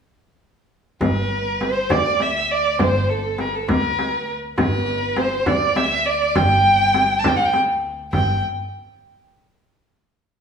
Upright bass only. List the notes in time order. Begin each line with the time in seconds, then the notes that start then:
1.01 G1
1.90 D2
2.80 G1
3.69 D2
4.58 G1
5.46 D2
6.36 G1
7.25 D2
8.13 G1